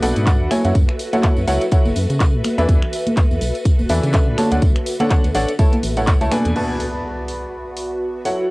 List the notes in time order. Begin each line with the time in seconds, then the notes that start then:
Already playing: F#4 A4 B4 E5
0.03 B1 B2 D4 A4 B4 F#5, open hi-hat, tambourine
0.16 G#2, closed hi-hat, tambourine
0.27 D4 A4 B4 F#5, kick, clap, closed hi-hat, tambourine
0.41 D2
0.51 F#3 E4 A4 C#5 G#5, finger snap, open hi-hat, tambourine, high conga
0.65 F#2 F#3 E4 A4 C#5 F#5, closed hi-hat, tambourine
0.75 F#2, kick, closed hi-hat, tambourine
0.89 finger snap
0.99 open hi-hat, tambourine
1.13 F#3 E4 A4 C#5 F#5, closed hi-hat, tambourine, high conga
1.23 F#3 E4 A4 C#5 F#5, kick, clap, closed hi-hat, tambourine
1.37 F#2, tambourine
1.47 C#2 F#3 E4 A4 C#5 F#5, open hi-hat, tambourine
1.61 closed hi-hat, tambourine
1.72 F#3 E4 A4 C#5 F#5, kick, closed hi-hat, tambourine
1.85 F#1, tambourine, high conga
1.96 F#2, open hi-hat, tambourine
2.10 C#3, closed hi-hat, tambourine
2.20 kick, clap, closed hi-hat, tambourine
2.34 A2
2.44 finger snap, open hi-hat, tambourine, high conga
2.58 E2 E3 D4 A4 B4 E5, closed hi-hat, tambourine
2.69 E2, kick, closed hi-hat, tambourine
2.82 finger snap
2.93 open hi-hat, tambourine
3.06 closed hi-hat, tambourine, high conga
3.17 kick, clap, closed hi-hat, tambourine
3.31 E2, tambourine
3.41 B1, open hi-hat, tambourine
3.55 closed hi-hat, tambourine
3.65 kick, closed hi-hat, tambourine
3.79 E1, tambourine, high conga
3.89 E2 E3 D4 A4 B4 E5, open hi-hat, tambourine
4.03 C#3, closed hi-hat, tambourine
4.13 D3 D4 A4 B4 E5, kick, clap, closed hi-hat, tambourine
4.28 A2
4.38 D3 D4 A4 C#5 A5, finger snap, open hi-hat, tambourine, high conga
4.52 D2 D3 D4 A4 C#5 F#5, closed hi-hat, tambourine
4.62 D2, kick, closed hi-hat, tambourine
4.76 finger snap, closed hi-hat
4.86 open hi-hat, tambourine
5.00 D3 D4 A4 C#5 F#5, closed hi-hat, tambourine, high conga
5.10 D3 D4 A4 C#5 F#5, kick, clap, closed hi-hat, tambourine
5.24 D2, closed hi-hat, tambourine
5.34 A1 D4 A4 C#5 F#5, open hi-hat, tambourine
5.48 closed hi-hat, tambourine
5.59 A3 E4 G#4 A4 C#5 A5, kick, closed hi-hat, tambourine
5.72 closed hi-hat, tambourine, high conga
5.83 A1, open hi-hat, tambourine
5.87 C#6
5.96 A3 E4 A4 C#5 F#5, closed hi-hat, tambourine
6.03 B5
6.07 kick, clap, closed hi-hat, tambourine
6.21 C#2 A3 E4 A4 C#5 A5, closed hi-hat, tambourine
6.32 B2 D4 A4 B4 G#5, finger snap, open hi-hat, tambourine, high conga
6.45 E2, closed hi-hat, tambourine
6.56 B3 F#4 B4 D5 A5, crash, impact
6.72 B4 E5
6.80 open hi-hat
7.28 open hi-hat
7.32 A5
7.77 open hi-hat
8.25 F#3 E4 A4 C#5 F#5, open hi-hat